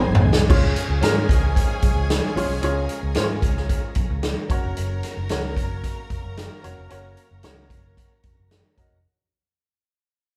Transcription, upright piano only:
Already playing: G#3 C4 D#4 G#4 C5
0.49 C#4 F4 G#4 C#5
1.01 C#4 F4 G#4 A#4
2.36 C#4 F4 G#4 C#5
2.62 C#4 F4 G#4 C#5
3.15 C#4 F4 G#4 C5
3.24 C#5
4.49 C#4 F#4 A#4 C#5
5.30 C#4 F#4 A#4 C#5
6.62 C#4 F#4 A#4 C#5
6.89 C#4 F#4 A#4 C#5
7.43 C#4 F#4 A#4 C#5
8.76 C#4 F#4 A#4 D#5

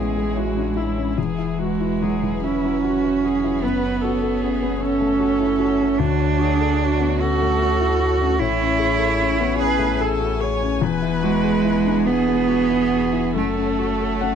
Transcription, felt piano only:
Already playing: A2 B3 C#4 E4 G#4
0.17 G#3
0.37 E4
0.57 D4
0.77 E4
0.98 C#4
1.18 E2
1.38 E4
1.59 F#4
1.80 E4
2.02 F#3
2.23 E3
2.44 E4
2.64 F#3
2.84 F#4
3.04 E4
3.24 F#4
3.44 E4
3.63 F#2
3.83 C#4
4.04 F#4
4.22 A4
4.41 C#4
4.62 B3
4.80 C#4
5.01 A3
5.20 F#4
5.40 E4
5.59 F#4
5.81 C#4
5.99 D2
6.20 C#5
6.39 F#4
6.60 A4
6.82 C#5
7.01 B3
7.21 C#4
7.42 A3
7.62 F#4
7.81 E4
8.00 F#4
8.21 C#4
8.40 A2
8.61 C#4
8.79 G#4
8.99 A4
9.19 C#4
9.40 B3
9.58 C#4
9.79 A3
10.01 G#4
10.20 F#4
10.40 G#4
10.62 C#4
10.82 E2
11.02 E4
11.23 F#4
11.44 G#4
11.65 E4
11.85 D4
12.06 E4
12.28 G#3
12.48 F#4
12.70 E4
12.91 F#4
13.13 E4
13.35 F#2
13.57 C#4
13.79 F#4
14.00 A4
14.21 C#4 F#5

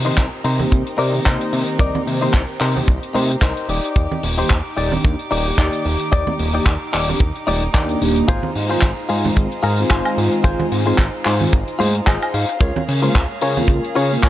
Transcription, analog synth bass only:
Already playing: C3
0.18 C2
0.45 C3
0.72 C2
0.99 C3
1.26 C2
1.53 C3
1.79 C2
2.07 C3
2.34 C2
2.61 C3
2.88 C2
3.15 C3
3.42 C2
3.69 D#1
3.96 D#2
4.23 D#1
4.51 D#2
4.77 D#1
5.05 D#2
5.31 D#1
5.58 D#2
5.86 D#1
6.13 D#2
6.39 D#1
6.66 D#2
6.94 D#1
7.20 D#2
7.48 D#1
7.74 D#2
8.02 D#1
8.29 G#1
8.56 G#2
8.83 G#1
9.10 G#2
9.37 G#1
9.63 G#2
9.91 G#1
10.18 G#2
10.44 G#1
10.72 G#2
10.99 G#1
11.26 G#2
11.53 G#1
11.80 G#2
12.07 G#1
12.34 G#2
12.61 C#2
12.89 C#3
13.15 C#2
13.43 C#3
13.68 C#2
13.96 C#3
14.23 C#2

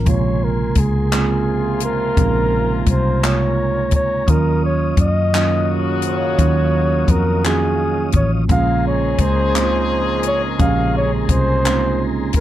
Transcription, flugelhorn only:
Already playing: A#4
0.09 C#5
0.44 A#4
0.79 G#4
1.85 A#4
2.90 C5
3.25 C#5
3.95 C#5
4.30 A#4
4.65 C#5
5.01 D#5
6.06 C#5
7.10 A#4
7.45 G#4
8.16 C#5
8.52 F5
8.87 C#5
9.21 C5
10.27 C#5
10.61 F5
10.97 C#5
11.32 C5
12.37 A#4

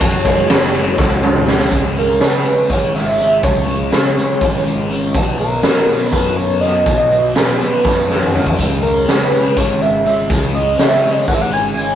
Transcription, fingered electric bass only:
0.01 F#1
0.50 F#1
0.98 C#2
1.72 C#2
2.21 C#3
2.70 G#1
3.44 C#2
3.92 C#3
4.41 G#1
5.15 B1
5.64 B2
6.13 F#2
6.86 B1
7.37 B2
7.85 F#2
8.59 C#2
9.08 C#3
9.57 G#1
10.30 C#2
10.79 C#3
11.28 G#1

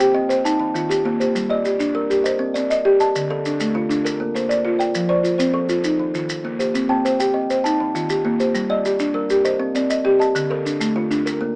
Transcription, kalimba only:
0.00 G5
0.14 C4 D#5
0.45 A5
0.60 D#3
0.75 F4
1.05 A#3
1.21 G4
1.50 G3 D5
1.95 G3 A#4
2.24 D#5
2.39 C4
2.54 D5
2.85 G4
3.00 D#5
3.30 D3 A4
3.60 A4
3.75 D3 F4
4.05 A#4
4.20 A#3
4.35 C5
4.65 F4
4.79 D5
5.09 F3 C5
5.38 C5
5.54 F3 A4
6.00 D#3
6.15 F4
6.45 A#3
6.59 G4
6.89 C4 G5
7.20 G5
7.34 C4 D#5
7.64 A5
7.80 D#3
7.95 F4
8.25 A#3
8.40 G4
8.70 G3 D5
9.14 G3 A#4
9.45 D#5
9.60 C4
9.76 D5
10.05 G4
10.19 D#5
10.51 D3 A4
10.96 D3 F4
11.26 A#4
11.41 A#3

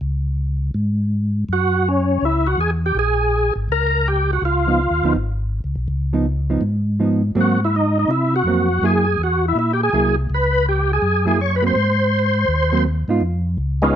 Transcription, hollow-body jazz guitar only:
4.67 F3 B3 D#4
5.04 F3 B3 D#4
6.13 F3 B3 D#4
6.50 F3 B3 D#4
7.00 F3 B3 D#4
7.35 F#3 A#3 C4
8.47 F#3 A#3 C4
8.83 F#3 A#3 E4 G#4
9.93 F#3 A#3 E4 G#4
11.26 F#3 A#3 E4 G#4
11.62 F#3 A#3 C4
12.72 F#3 A#3 C4
13.09 B3 D#4 F4

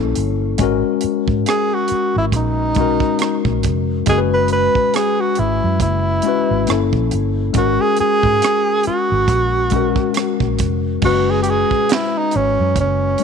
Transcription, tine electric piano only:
Already playing: A#3 C#4 E4 A4
0.58 G#3 C#4 F#4
0.63 A#4
2.76 G#3 C#4 F#4
2.81 A#4
4.06 G#3 C#4 F#4
4.12 A#4
4.18 B4
6.23 G#3 C#4 F#4
6.28 B4
6.67 A#3 C#4 E4
6.72 A4
7.53 G#3 C#4 F#4
7.58 A#4
9.71 G#3 C#4 F#4
9.76 A#4
11.02 G#3 C#4 F#4
11.06 B4
13.19 G#3

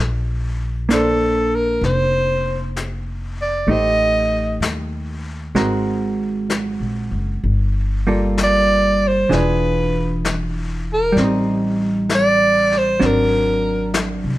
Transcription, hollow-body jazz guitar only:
0.89 A#3 D4
0.94 C5
3.68 A3 D#4 G4
3.72 C5
5.55 G#3 C4 F#4 A#4
8.07 G3 A#3 F4 A4
9.29 E3 D4 F4 G#4
11.12 G3
11.18 C4
11.23 D#4
13.00 F#3 C4 D4

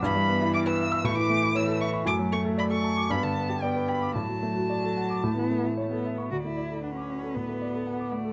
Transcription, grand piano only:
0.02 G2
0.15 G3
0.29 B3
0.41 E4
0.54 E5
0.66 B4
0.79 E5
0.92 E6
1.04 A2
1.17 E3
1.30 A3
1.43 E4
1.55 C#5
1.68 A4
1.81 E5
1.94 C#6
2.06 F#2
2.19 F#3
2.32 A3
2.45 A4
2.58 D5
2.71 A4
2.83 A5
2.97 D6
3.10 G2
3.23 D3
3.36 B3
3.49 G4
3.62 D5
3.76 B4
3.88 G5
4.02 D6
4.15 A2
4.29 F#3
4.42 A3
4.56 F#4
4.70 D5
4.83 A4
4.97 F#5
5.10 D6
5.24 A2
5.38 E3
5.51 A3
5.64 E4
5.77 C#5
5.91 A4
6.05 E5
6.18 C#6
6.31 D2
6.44 A3
6.57 D5
6.70 A4
6.83 F#5
6.97 D6
7.10 F#5
7.23 A4
7.36 A2
7.49 A3
7.62 D5
7.74 A4
7.87 F#5
8.00 D6
8.12 F#5
8.25 A4

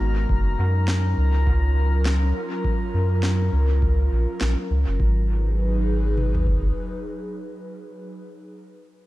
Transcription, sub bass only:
0.00 G#1
0.29 F#1
0.59 F#2
1.18 C#2
2.94 F#2
3.53 C#2
4.12 A#1
4.41 A#1
4.70 C#2
4.88 F#1
5.00 G#1

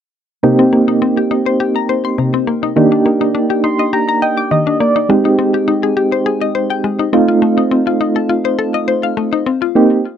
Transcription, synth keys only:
0.43 A#3 C4 D#4 G4
2.76 A#3 D4 D#4 G4
3.64 C6
3.93 A#5
4.22 G5
4.51 D#5
4.80 D5
5.09 G#3 C4 D#4 G4
7.13 A3 C4 D#4 F4
9.75 A#3 C4 D#4 G4

